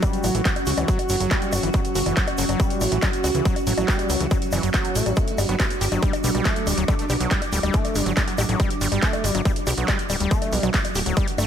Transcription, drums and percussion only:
0.02 kick, closed hi-hat, high bongo, shaker
0.13 closed hi-hat, shaker
0.24 open hi-hat, high bongo, shaker
0.35 closed hi-hat, shaker
0.45 kick, clap, closed hi-hat, shaker
0.56 closed hi-hat, high bongo, shaker
0.66 open hi-hat, shaker
0.77 closed hi-hat, high bongo, shaker
0.88 kick, closed hi-hat, shaker
0.99 closed hi-hat, high bongo, shaker
1.09 open hi-hat, shaker
1.20 closed hi-hat, shaker
1.31 kick, clap, closed hi-hat, high bongo, shaker
1.42 closed hi-hat, shaker
1.52 open hi-hat, high bongo, shaker
1.63 closed hi-hat, shaker
1.73 kick, closed hi-hat, high bongo, shaker
1.85 closed hi-hat, shaker
1.95 open hi-hat, shaker
2.06 closed hi-hat, high bongo, shaker
2.17 kick, clap, closed hi-hat, shaker
2.27 closed hi-hat, high bongo, shaker
2.38 open hi-hat, shaker
2.49 closed hi-hat, high bongo, shaker
2.60 kick, closed hi-hat, shaker
2.70 closed hi-hat, shaker
2.81 open hi-hat, high bongo, shaker
2.91 closed hi-hat, shaker
3.02 kick, clap, closed hi-hat, high bongo, shaker
3.13 closed hi-hat, shaker
3.24 open hi-hat, high bongo, shaker
3.34 closed hi-hat, shaker
3.45 kick, closed hi-hat, shaker
3.56 closed hi-hat, high bongo, shaker
3.67 open hi-hat, shaker
3.78 closed hi-hat, high bongo, shaker
3.88 kick, clap, closed hi-hat, shaker
3.99 closed hi-hat, high bongo, shaker
4.10 open hi-hat, shaker
4.20 closed hi-hat, shaker
4.31 kick, closed hi-hat, high bongo, shaker
4.42 closed hi-hat, shaker
4.52 open hi-hat, high bongo, shaker
4.63 closed hi-hat, shaker
4.74 kick, clap, closed hi-hat, high bongo, shaker
4.84 closed hi-hat, shaker
4.95 open hi-hat, shaker
5.06 closed hi-hat, high bongo, shaker
5.16 kick, closed hi-hat, high bongo, shaker
5.28 closed hi-hat, shaker
5.38 open hi-hat, high bongo, shaker
5.49 closed hi-hat, shaker
5.60 kick, clap, closed hi-hat, high bongo, shaker
5.70 closed hi-hat, shaker
5.81 open hi-hat, shaker
5.92 closed hi-hat, high bongo, shaker
6.03 kick, closed hi-hat, shaker
6.13 closed hi-hat, high bongo, shaker
6.24 open hi-hat, shaker
6.35 closed hi-hat, high bongo
6.45 kick, clap, closed hi-hat, shaker
6.56 closed hi-hat, shaker
6.67 open hi-hat, high bongo, shaker
6.77 closed hi-hat, shaker
6.88 kick, closed hi-hat, high bongo, shaker
6.99 closed hi-hat, shaker
7.09 open hi-hat, high bongo, shaker
7.20 closed hi-hat, shaker
7.31 kick, clap, closed hi-hat, shaker
7.42 closed hi-hat, high bongo, shaker
7.53 open hi-hat, shaker
7.63 closed hi-hat, high bongo, shaker
7.73 kick, closed hi-hat, shaker
7.85 closed hi-hat, high bongo, shaker
7.95 open hi-hat, shaker
8.06 closed hi-hat, shaker
8.17 kick, clap, closed hi-hat, high bongo, shaker
8.28 closed hi-hat, shaker
8.38 open hi-hat, high bongo, shaker
8.49 closed hi-hat, shaker
8.60 kick, closed hi-hat, high bongo, shaker
8.70 closed hi-hat, shaker
8.81 open hi-hat, shaker
8.92 closed hi-hat, high bongo, shaker
9.03 kick, clap, closed hi-hat, shaker
9.13 closed hi-hat, high bongo, shaker
9.24 open hi-hat, shaker
9.35 closed hi-hat, high bongo, shaker
9.45 kick, closed hi-hat, shaker
9.56 closed hi-hat, shaker
9.67 open hi-hat, high bongo, shaker
9.78 closed hi-hat, shaker
9.88 kick, clap, closed hi-hat, high bongo, shaker
9.99 closed hi-hat, shaker
10.10 open hi-hat, high bongo, shaker
10.20 closed hi-hat, shaker
10.31 kick, closed hi-hat, shaker
10.42 closed hi-hat, high bongo, shaker
10.52 open hi-hat, shaker
10.63 closed hi-hat, high bongo, shaker
10.74 kick, clap, closed hi-hat, shaker
10.84 closed hi-hat, high bongo, shaker
10.95 open hi-hat, shaker
11.06 closed hi-hat, shaker
11.17 kick, closed hi-hat, high bongo, shaker
11.27 closed hi-hat, shaker
11.38 open hi-hat, high bongo, shaker

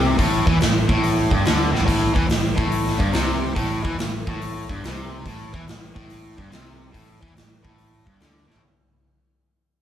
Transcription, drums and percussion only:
0.19 kick, open hi-hat
0.47 kick
0.60 snare, open hi-hat
0.89 kick
1.03 open hi-hat
1.31 kick
1.45 snare, open hi-hat
1.61 snare
1.75 snare
1.80 floor tom
1.88 kick, open hi-hat, splash
2.16 kick
2.29 snare, open hi-hat
2.58 kick
2.72 open hi-hat
2.88 snare
3.00 kick
3.13 snare, open hi-hat
3.56 kick, open hi-hat
3.85 kick
3.99 snare, open hi-hat
4.27 kick
4.41 open hi-hat
4.69 kick
4.84 snare, open hi-hat
5.26 kick, open hi-hat
5.54 kick
5.68 snare, open hi-hat
5.96 kick
6.10 open hi-hat
6.38 kick
6.52 snare, open hi-hat
6.94 kick, open hi-hat
7.23 kick
7.36 snare, open hi-hat
7.65 kick
7.78 open hi-hat
8.07 kick
8.20 snare, open hi-hat
8.37 snare
8.51 snare
8.56 floor tom

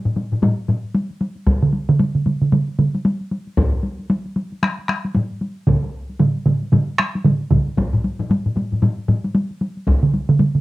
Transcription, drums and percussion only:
0.05 taiko low-mid
0.16 taiko low-mid, taiko high
0.32 taiko low-mid, taiko high
0.42 taiko low-mid, taiko high
0.59 taiko high
0.68 taiko low-mid, taiko high
0.95 taiko high
1.11 taiko high
1.21 taiko high
1.36 taiko high
1.47 taiko, taiko high
1.63 taiko mid
1.73 taiko high
1.89 taiko mid, taiko high
1.99 taiko mid, taiko high
2.15 taiko mid
2.26 taiko mid, taiko high
2.42 taiko mid, taiko high
2.52 taiko mid, taiko high
2.68 taiko high
2.79 taiko mid, taiko high
2.95 taiko high
3.05 taiko high
3.21 taiko high
3.31 taiko high
3.47 taiko high
3.57 taiko, taiko low-mid, taiko high
3.73 taiko high
3.83 taiko high
3.99 taiko high
4.10 taiko high
4.26 taiko high
4.36 taiko high
4.52 taiko high
4.63 taiko rim, taiko high
4.79 taiko high
4.89 taiko rim, taiko high
5.05 taiko high
5.15 taiko low-mid, taiko high
5.31 taiko high
5.41 taiko high
5.67 taiko, taiko low-mid, taiko mid, taiko high
5.83 taiko high
6.09 taiko high
6.19 taiko low-mid, taiko mid, taiko high
6.36 taiko high
6.46 taiko low-mid, taiko mid, taiko high
6.62 taiko high
6.72 taiko low-mid, taiko mid, taiko high
6.89 taiko high
6.98 taiko rim, taiko high
7.15 taiko high
7.24 taiko low-mid, taiko mid, taiko high
7.41 taiko high
7.51 taiko, taiko low-mid, taiko mid, taiko high
7.68 taiko high
7.77 taiko, taiko high
7.93 taiko low-mid, taiko high
8.04 taiko high
8.19 taiko low-mid, taiko high
8.30 taiko low-mid, taiko high
8.46 taiko low-mid, taiko high
8.56 taiko low-mid, taiko high
8.72 taiko low-mid, taiko high
8.82 taiko low-mid, taiko high
8.99 taiko high
9.08 taiko low-mid, taiko high
9.24 taiko high
9.35 taiko high
9.51 taiko high
9.61 taiko high
9.77 taiko high
9.87 taiko, taiko high
10.03 taiko mid, taiko high
10.14 taiko high
10.29 taiko mid, taiko high
10.39 taiko mid, taiko high
10.55 taiko mid, taiko high

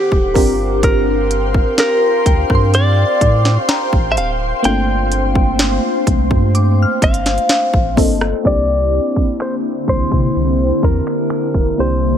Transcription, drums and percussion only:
0.12 kick
0.35 kick, open hi-hat
0.83 kick, closed hi-hat
1.31 closed hi-hat
1.54 kick
1.78 snare, closed hi-hat
2.26 kick, closed hi-hat
2.50 kick, cross-stick
2.74 closed hi-hat
3.21 kick, closed hi-hat
3.45 snare
3.69 snare, closed hi-hat
3.93 kick
4.17 closed hi-hat
4.64 closed hi-hat
5.12 closed hi-hat
5.35 kick
5.59 snare, closed hi-hat
6.07 kick, closed hi-hat
6.31 kick
6.55 closed hi-hat
7.02 kick, closed hi-hat
7.14 closed hi-hat
7.26 snare, closed hi-hat
7.38 closed hi-hat
7.49 snare, closed hi-hat
7.74 kick
7.97 kick, open hi-hat
8.21 cross-stick
8.45 kick, closed hi-hat
8.93 closed hi-hat
9.16 kick
9.40 finger snap, closed hi-hat
9.88 kick, closed hi-hat
10.12 kick
10.36 closed hi-hat
10.83 kick, closed hi-hat
11.07 finger snap
11.30 finger snap, closed hi-hat
11.54 kick
11.79 closed hi-hat

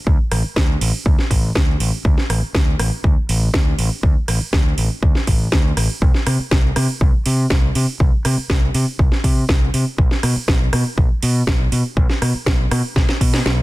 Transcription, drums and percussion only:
0.07 kick
0.32 cross-stick, open hi-hat
0.56 kick, snare
0.81 open hi-hat
1.06 kick
1.19 snare
1.31 kick, open hi-hat
1.55 kick, snare
1.80 open hi-hat
2.05 kick
2.18 snare
2.30 cross-stick, open hi-hat
2.55 kick, snare
2.79 cross-stick, open hi-hat
3.04 kick
3.29 open hi-hat
3.54 kick, snare
3.79 open hi-hat
4.03 kick
4.28 cross-stick, open hi-hat
4.53 kick, snare
4.78 open hi-hat
5.03 kick
5.15 snare
5.27 kick, open hi-hat
5.52 kick, snare
5.77 cross-stick, open hi-hat
6.02 kick
6.14 snare
6.27 cross-stick, open hi-hat
6.51 kick, snare
6.76 cross-stick, open hi-hat
7.01 kick
7.26 open hi-hat
7.50 kick, snare
7.75 open hi-hat
8.00 kick
8.25 cross-stick, open hi-hat
8.50 kick, snare
8.74 open hi-hat
8.99 kick
9.12 snare
9.24 kick, open hi-hat
9.49 kick, snare
9.74 open hi-hat
9.98 kick
10.11 snare
10.23 cross-stick, open hi-hat
10.48 kick, snare
10.73 cross-stick, open hi-hat
10.98 kick
11.23 open hi-hat
11.47 kick, snare
11.72 open hi-hat
11.97 kick
12.10 snare
12.22 cross-stick, open hi-hat
12.46 kick, snare
12.71 cross-stick, open hi-hat
12.96 kick, snare
13.09 snare
13.21 kick, open hi-hat
13.34 snare
13.46 snare

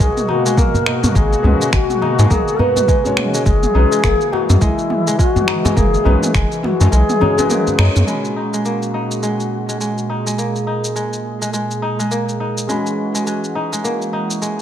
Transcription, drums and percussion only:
0.00 kick, shaker
0.17 mid tom, shaker
0.29 djembe slap
0.46 shaker
0.57 kick, mid tom, shaker
0.74 djembe tone, djembe bass, shaker
0.86 finger snap
1.04 mid tom, djembe slap, djembe tone, djembe bass, shaker
1.15 kick, shaker
1.32 djembe slap, shaker
1.44 mid tom, djembe tone, djembe bass
1.61 shaker
1.73 finger snap, kick, shaker
1.90 mid tom, shaker
2.02 djembe slap
2.19 djembe slap, shaker
2.31 kick, mid tom, shaker
2.48 shaker
2.59 djembe tone, djembe bass
2.76 mid tom, djembe tone, shaker
2.88 kick, shaker
3.05 djembe tone, shaker
3.17 finger snap, mid tom, djembe tone
3.34 shaker
3.46 kick, shaker
3.63 mid tom, shaker
3.92 shaker
4.04 finger snap, kick, mid tom, shaker
4.21 shaker
4.33 djembe slap
4.49 mid tom, djembe slap, shaker
4.61 kick, shaker
4.79 shaker
4.90 mid tom, djembe slap
5.07 shaker
5.19 kick, shaker
5.36 mid tom, djembe tone, djembe bass, shaker
5.48 finger snap
5.65 djembe slap, djembe tone, djembe bass, shaker
5.77 kick, mid tom, shaker
5.94 djembe slap, shaker
6.05 djembe tone, djembe bass
6.23 mid tom, shaker
6.34 finger snap, kick, shaker
6.52 shaker
6.63 mid tom, djembe slap
6.81 djembe slap, shaker
6.92 shaker
7.09 mid tom, shaker
7.21 djembe tone, djembe bass
7.38 djembe tone, shaker
7.50 mid tom, shaker
7.67 djembe tone, shaker
7.78 finger snap, djembe tone
7.96 mid tom, shaker
8.08 shaker
8.25 shaker
8.54 shaker
8.65 shaker
8.82 shaker
9.11 shaker
9.23 shaker
9.40 shaker
9.69 shaker
9.81 shaker
9.98 shaker
10.27 shaker
10.38 shaker
10.56 shaker
10.84 shaker
10.96 shaker
11.13 shaker
11.42 shaker
11.54 shaker
11.71 shaker
12.00 shaker
12.11 shaker
12.29 shaker
12.58 shaker
12.69 shaker
12.86 shaker
13.15 shaker
13.27 shaker
13.44 shaker
13.73 shaker
13.85 shaker
14.02 shaker
14.31 shaker
14.42 shaker

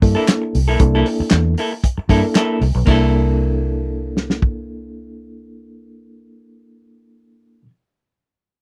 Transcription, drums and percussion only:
0.02 kick, open hi-hat
0.28 snare, clap, closed hi-hat
0.55 open hi-hat
0.80 kick, closed hi-hat
1.06 open hi-hat
1.30 snare, clap, closed hi-hat
1.58 open hi-hat
1.84 kick, closed hi-hat
2.09 kick, open hi-hat
2.35 snare, clap, closed hi-hat
2.62 open hi-hat
2.87 kick, crash
4.17 snare
4.30 snare
4.42 kick

